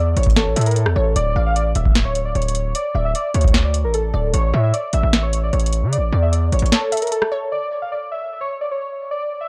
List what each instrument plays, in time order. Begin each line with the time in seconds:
Already playing: 808-style bass E2, synth keys D5, synth pluck D5
0.17 808-style bass A1, synth keys C#5, closed hi-hat
0.23 kick, closed hi-hat
0.30 closed hi-hat
0.36 synth keys A4, synth pluck C#5, snare, closed hi-hat
0.56 808-style bass A2, synth pluck E5, closed hi-hat
0.61 closed hi-hat
0.66 synth keys A#4, closed hi-hat
0.71 closed hi-hat
0.76 synth keys A4, closed hi-hat
0.86 808-style bass E2, cross-stick
0.96 808-style bass A1, synth pluck C#5
1.16 808-style bass D1, synth keys D5, closed hi-hat
1.36 808-style bass A1, synth pluck F5
1.46 synth keys F5
1.56 synth keys D5, closed hi-hat
1.75 808-style bass D1, synth keys E5, closed hi-hat
1.85 kick
1.95 snare, closed hi-hat
2.05 synth keys C#5
2.15 closed hi-hat
2.25 synth keys D5
2.35 808-style bass D1, synth keys C#5, closed hi-hat
2.42 closed hi-hat
2.48 closed hi-hat
2.55 closed hi-hat
2.75 synth keys D5, closed hi-hat
2.95 808-style bass D1, synth pluck E5
3.05 synth keys E5
3.15 synth keys D5, closed hi-hat
3.34 808-style bass D2, synth keys C#5, closed hi-hat
3.41 kick, closed hi-hat
3.48 closed hi-hat
3.54 snare, closed hi-hat
3.64 synth keys D5
3.74 closed hi-hat
3.84 808-style bass A1, synth keys A#4
3.94 synth keys A4, closed hi-hat
4.14 808-style bass D1, synth pluck D5
4.34 808-style bass A1, synth keys C#5, closed hi-hat
4.54 808-style bass A2, synth pluck E5
4.63 synth keys E5
4.73 synth keys D5, closed hi-hat
4.93 808-style bass A1, synth keys E5, closed hi-hat
5.03 808-style bass A1
5.13 snare, closed hi-hat
5.23 synth keys C#5
5.33 closed hi-hat
5.43 synth keys D5
5.53 808-style bass A1, synth keys C#5, closed hi-hat
5.60 closed hi-hat
5.66 closed hi-hat
5.73 closed hi-hat
5.83 808-style bass C#3
5.93 synth keys D5, closed hi-hat
5.98 808-style bass A1
6.13 808-style bass E2, synth pluck D5
6.22 synth keys E5
6.32 synth keys D5, closed hi-hat
6.52 808-style bass A1, synth keys C#5, closed hi-hat
6.59 808-style bass A1, closed hi-hat
6.66 closed hi-hat
6.72 synth keys A4, synth pluck C#5, snare, closed hi-hat
6.92 synth pluck E5, closed hi-hat
6.97 closed hi-hat
7.02 synth keys A#4, closed hi-hat
7.07 closed hi-hat
7.12 synth keys A4, closed hi-hat
7.22 cross-stick
7.32 synth pluck C#5
7.52 synth keys D5
7.82 synth keys F5
7.92 synth keys D5
8.12 synth keys E5
8.41 synth keys C#5
8.61 synth keys D5
8.71 synth keys C#5
9.11 synth keys D5
9.41 synth keys E5